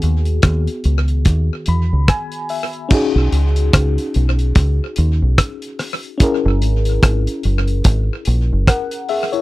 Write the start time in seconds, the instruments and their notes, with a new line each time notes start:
Already playing: fm electric piano D#3 B3 F#4 G#4
0.02 fingered electric bass D#2, closed hi-hat
0.25 closed hi-hat
0.42 fingered electric bass D#2, kick, cross-stick, closed hi-hat
0.67 closed hi-hat
0.84 fingered electric bass C#2, closed hi-hat
1.08 closed hi-hat
1.25 fingered electric bass D#2, kick, closed hi-hat
1.66 fingered electric bass E2, fm electric piano B5, closed hi-hat
1.93 fingered electric bass C#2
2.08 fm electric piano G#5, kick, cross-stick, closed hi-hat
2.32 closed hi-hat
2.49 fm electric piano E5, open hi-hat
2.73 closed hi-hat
2.89 fm electric piano C#4 D#4 F#4, kick, crash
2.94 fm electric piano G#4
3.16 fingered electric bass B1
3.32 fingered electric bass C#2, closed hi-hat
3.56 closed hi-hat
3.73 fingered electric bass C#2, kick, cross-stick, closed hi-hat
3.98 closed hi-hat
4.14 fingered electric bass B1, closed hi-hat
4.39 closed hi-hat
4.55 fingered electric bass C#2, kick, closed hi-hat
4.96 fingered electric bass D#2, closed hi-hat
5.22 fingered electric bass B1
5.38 kick, cross-stick, closed hi-hat
5.62 closed hi-hat
5.79 cross-stick, open hi-hat
6.03 closed hi-hat
6.18 fm electric piano C#4 E4 G#4, kick, closed hi-hat
6.23 fm electric piano A#4
6.46 fingered electric bass F#1
6.62 fingered electric bass G#1, closed hi-hat
6.85 closed hi-hat
7.03 fingered electric bass G#1, kick, cross-stick, closed hi-hat
7.27 closed hi-hat
7.43 fingered electric bass F#1, closed hi-hat
7.68 closed hi-hat
7.84 fingered electric bass G#1, kick, closed hi-hat
8.25 fingered electric bass A#1, closed hi-hat
8.52 fingered electric bass F#1
8.67 fm electric piano A#4 F#5, kick, cross-stick, closed hi-hat
8.91 closed hi-hat
9.09 fm electric piano G#4 E5, open hi-hat
9.32 fm electric piano E4 C#5, closed hi-hat